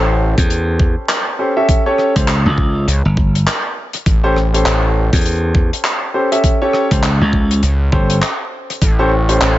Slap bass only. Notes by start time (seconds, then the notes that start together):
0.38 E2
2.16 C#2
2.46 C#2
3.05 G1
5.13 E2
6.91 C#2
7.21 C#2
7.92 G1